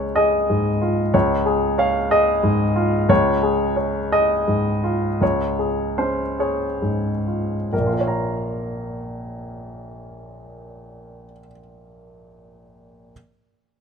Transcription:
0.00 1.10 C#2 soft
0.00 0.17 G#4 soft
0.00 1.14 C#5 medium
0.16 0.69 G#4 soft
0.16 1.09 D#5 medium
0.50 1.01 G#2 soft
0.82 1.33 F4 soft
1.14 3.05 C#2 medium
1.14 1.75 C#5 medium
1.46 1.98 G#4 soft
1.78 2.30 C#5 soft
1.78 2.09 F5 medium
2.11 2.63 G#4 soft
2.11 3.06 D#5 medium
2.43 2.96 G#2 soft
2.76 3.29 F4 soft
3.09 5.17 C#2 soft
3.09 3.75 C#5 medium
3.43 3.98 G#4 soft
3.76 4.33 C#5 soft
4.12 4.70 G#4 soft
4.12 5.17 D#5 medium
4.48 5.06 G#2 soft
4.84 5.43 F4 soft
5.21 7.68 C#2 soft
5.21 5.95 C#5 soft
5.59 6.22 G#4 soft
5.98 6.64 C#4 soft
5.98 6.36 C5 soft
6.39 7.08 G#4 soft
6.39 6.79 C#5 soft
6.82 7.54 G#2 soft
7.27 7.72 F4 soft
7.73 11.24 A#1 soft
7.73 7.92 A#4 soft
7.80 11.31 A#2 soft
7.87 11.39 F4 soft
7.94 11.46 A#4 soft
8.00 11.52 C#5 soft
8.07 11.59 A#5 soft

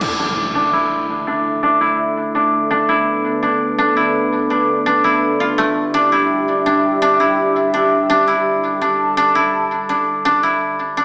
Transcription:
0.00 0.19 D4 loud
0.00 11.05 D4 medium
0.00 0.73 E4 medium
0.00 5.72 A4 medium
0.00 2.88 E5 medium
0.00 crash medium
0.00 impact medium
0.19 0.55 D4 medium
0.55 1.27 D4 medium
0.73 1.80 E4 medium
1.27 1.62 D4 medium
1.63 2.34 D4 medium
1.81 2.88 E4 medium
2.35 2.70 D4 medium
2.71 3.42 D4 medium
2.89 3.96 E4 medium
2.89 5.75 B4 medium
3.43 3.78 D4 medium
3.78 4.50 D4 medium
3.97 5.04 E4 medium
4.50 4.86 D4 medium
4.86 5.94 D4 medium
5.04 5.46 E4 medium
5.40 6.18 F4 medium
5.58 8.47 A3 medium
5.76 11.05 G4 medium
5.76 8.63 E5 medium
5.94 6.66 D4 medium
6.12 7.19 E4 medium
6.66 7.01 D4 medium
7.02 7.73 D4 medium
7.20 8.27 E4 medium
7.74 8.09 D4 medium
8.10 8.81 D4 loud
8.28 9.35 E4 medium
8.64 11.05 A5 medium
8.81 9.17 D4 medium
9.17 9.89 D4 loud
9.35 10.43 E4 medium
9.89 10.25 D4 medium
10.25 10.97 D4 medium
10.43 11.05 E4 medium
10.97 11.05 D4 medium

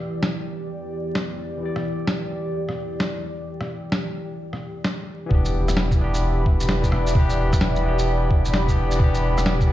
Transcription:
0.00 5.27 E2 medium
0.00 1.56 E3 medium
0.00 5.27 E3 medium
0.00 1.59 E4 medium
0.00 1.60 G4 medium
0.00 5.27 G4 medium
0.00 1.61 D5 medium
0.00 5.27 D5 medium
0.23 snare loud
1.15 snare medium
1.58 5.25 E3 medium
1.58 5.28 E4 medium
1.63 5.29 G4 medium
1.63 5.31 D5 medium
1.76 cross-stick soft
2.07 snare medium
2.69 cross-stick soft
3.00 snare medium
3.61 cross-stick soft
3.92 snare loud
4.53 cross-stick soft
4.84 snare medium
5.26 5.95 E3 loud
5.26 5.97 B3 medium
5.31 9.73 E1 medium
5.31 5.98 D4 medium
5.31 9.73 G4 medium
5.31 6.00 G4 loud
5.31 9.73 D5 medium
5.31 8.96 E5 medium
5.31 9.73 B5 medium
5.31 kick loud
5.45 shaker soft
5.68 cross-stick medium
5.68 shaker medium
5.77 snare loud
5.91 kick loud
5.91 shaker soft
5.96 6.79 E3 medium
5.96 6.80 B3 medium
6.01 6.81 D4 medium
6.01 6.83 G4 loud
6.14 shaker medium
6.46 kick loud
6.60 shaker medium
6.69 snare loud
6.82 7.10 E3 medium
6.82 7.13 B3 medium
6.82 7.14 D4 medium
6.82 kick medium
6.82 shaker soft
6.86 7.14 G4 medium
6.92 cross-stick medium
7.07 shaker medium
7.11 7.79 E3 loud
7.11 7.82 B3 medium
7.15 7.83 D4 medium
7.15 7.84 G4 loud
7.15 kick loud
7.30 shaker soft
7.53 kick loud
7.53 cross-stick medium
7.53 shaker medium
7.61 snare loud
7.76 shaker soft
7.80 8.63 E3 medium
7.80 8.65 B3 medium
7.86 8.66 D4 medium
7.86 8.67 G4 medium
7.99 shaker medium
8.31 kick loud
8.45 shaker medium
8.54 snare loud
8.66 8.94 E3 medium
8.66 8.97 B3 medium
8.66 8.98 D4 medium
8.66 8.99 G4 medium
8.66 kick medium
8.66 shaker soft
8.91 shaker medium
8.96 9.64 E3 medium
8.96 9.66 B3 medium
9.00 9.68 D4 medium
9.00 9.69 G4 loud
9.00 9.73 F#5 medium
9.00 kick loud
9.15 shaker soft
9.38 cross-stick medium
9.38 shaker medium
9.46 snare loud
9.61 kick loud
9.61 shaker soft
9.65 9.73 E3 medium
9.65 9.73 B3 medium

